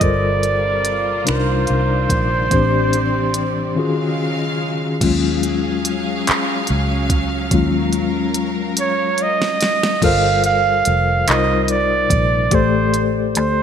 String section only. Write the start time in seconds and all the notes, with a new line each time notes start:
0.00 C3 G3 A#3 F4
1.28 D#3 D5
2.53 C3 G3 C4
3.76 C#3 F#3 G#3 F5
5.02 F#3 C#4 G#4 F5
7.52 A#4